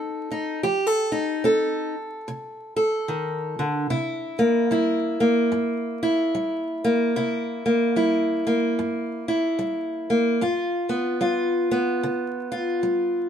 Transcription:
Already playing: C4 D#4 A4
0.31 D#4
0.63 F3 G4
0.87 A4
1.12 D#4
1.44 C4 A4
2.28 C3
2.76 A4
3.08 D#3
3.59 D3
3.90 C3 E4
4.39 A#3
4.71 G3 E4
5.20 A#3
5.52 G2
6.03 E4
6.35 G3
6.84 A#3
7.16 C3 E4
7.66 A#3
7.96 G3 E4
8.47 A#3
8.79 G2
9.28 E4
9.59 G3
10.10 A#3
10.41 G2 F4
10.89 B3
11.21 G3 F4
11.71 B3
12.03 D3
12.52 F4
12.83 G3

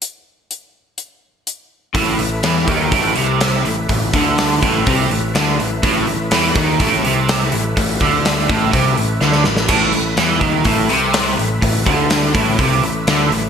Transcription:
0.02 closed hi-hat
0.51 closed hi-hat
0.98 closed hi-hat
1.47 closed hi-hat
1.94 A1 A2 A3 E4 B4, kick, open hi-hat
2.19 A1 A2, open hi-hat
2.43 E2 E3, snare, open hi-hat
2.67 D#2 D#3, kick, open hi-hat
2.92 A1 A2, kick, open hi-hat
3.15 C2 C3, open hi-hat
3.41 snare, open hi-hat
3.65 A1 A2, open hi-hat
3.89 A1 A2, kick, open hi-hat
4.13 D2 D3, kick, open hi-hat
4.38 snare, open hi-hat
4.62 A1 A2, kick, open hi-hat
4.86 C2 C3, kick, open hi-hat
5.10 A1 A2, open hi-hat
5.35 D2 D3, snare, open hi-hat
5.59 A1 A2, open hi-hat
5.83 A1 A2, kick, open hi-hat
6.07 A1 A2, open hi-hat
6.31 E2 E3, snare, open hi-hat
6.55 D#2 D#3, kick, open hi-hat
6.80 A1 A2, kick, open hi-hat
7.04 C2 C3, open hi-hat
7.29 snare, open hi-hat
7.52 A1 A2, open hi-hat
7.77 A1 A2, kick, open hi-hat
8.00 D2 D3, kick, open hi-hat
8.25 snare, open hi-hat
8.49 A1 A2, kick, open hi-hat
8.73 C2 C3, kick, open hi-hat
8.97 A1 A2, open hi-hat
9.21 D2 D3, snare
9.32 snare
9.44 A1 A2, snare
9.57 snare
9.68 A1 A2, kick, crash
9.93 A1 A2, open hi-hat
10.17 E2 E3, snare, open hi-hat
10.41 D#2 D#3, kick, open hi-hat
10.64 A1 A2, kick, open hi-hat
10.89 C2 C3, open hi-hat
11.14 snare, open hi-hat
11.38 A1 A2, open hi-hat
11.61 A1 A2, kick, open hi-hat
11.86 D2 D3, kick, open hi-hat
12.10 snare, open hi-hat
12.35 A1 A2, kick, open hi-hat
12.58 C2 C3, kick, open hi-hat
12.83 A1 A2, open hi-hat
13.07 D2 D3, snare, open hi-hat
13.31 A1 A2, open hi-hat

